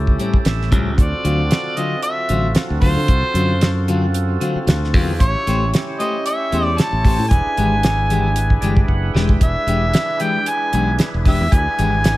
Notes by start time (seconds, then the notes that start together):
Already playing: C#2 C#4 E4 G4 A4
0.07 kick
0.19 A2 G3 C4 C#4, closed hi-hat
0.34 muted fingered electric bass stroke, kick
0.45 A1 E5, snare, closed hi-hat
0.62 snare
0.71 C#2 A2 G3 C4 C#4 G5, kick, closed hi-hat
0.97 D2 C4 F4 F#4 A4 D5, kick, closed hi-hat
1.24 D2 D3 F#3 C4 F4, closed hi-hat
1.51 snare, closed hi-hat
1.77 D3 F#3 C4 F4 D#5, closed hi-hat
2.02 E5, closed hi-hat
2.29 A1 D3 F#3 C4 F4, closed hi-hat
2.55 snare, closed hi-hat
2.70 D2
2.81 D3 F#3 C4 F4 C5, kick, open hi-hat
2.96 D3
3.08 C2, kick, closed hi-hat
3.23 muted fingered electric bass stroke
3.34 F#2 D3 F#3 C4 F4, closed hi-hat
3.61 snare, closed hi-hat
3.88 D3 F#3 C4 F4, closed hi-hat
4.14 closed hi-hat
4.41 D3 F#3 C4 F4, closed hi-hat
4.55 muted fingered electric bass stroke
4.67 D2, snare, closed hi-hat
4.84 snare
4.94 E2 D3 F#3 C4 F4, kick, open hi-hat
5.19 A1 C#4 E4 G4 C#5, kick, closed hi-hat
5.47 A1 A3 C#4 G4 C5, snare, closed hi-hat
5.74 snare, closed hi-hat
5.99 A3 C#4 G4 C5 D#5, closed hi-hat
6.26 E5, closed hi-hat
6.52 E2 A3 C#4 G4 C5, closed hi-hat
6.65 D5
6.78 A5, snare, closed hi-hat
6.93 A1
7.05 A3 C#4 G4 C5, kick, open hi-hat
7.19 A2
7.29 E1 D4 E4 G#4 B4 G#5, kick, closed hi-hat
7.46 muted fingered electric bass stroke
7.57 G#1 E3 G#3 D4 G4, closed hi-hat
7.83 snare, closed hi-hat
8.10 E3 G#3 D4 G4, closed hi-hat
8.36 closed hi-hat
8.50 kick
8.61 G1 E3 G#3 D4 G4 D5, closed hi-hat
8.77 kick
8.88 F#1 F#5, kick
9.14 E1 E3 G#3 D4 G4 G5, snare
9.29 kick
9.41 E1 E5, kick, closed hi-hat
9.67 E1 E3 G#3 D4 G4, closed hi-hat
9.94 snare, closed hi-hat
10.20 E3 G#3 D4 G4 G5, closed hi-hat
10.46 G#5, closed hi-hat
10.73 B1 E3 G#3 D4 G4, closed hi-hat
10.99 snare, closed hi-hat
11.14 E1
11.25 E3 G#3 D4 G4 E5, kick, open hi-hat
11.41 E2
11.52 D2 D4 E4 G#4 B4 G#5, kick, closed hi-hat
11.67 muted fingered electric bass stroke
11.78 G#1 E3 G#3 D4 G4, closed hi-hat
12.04 snare, closed hi-hat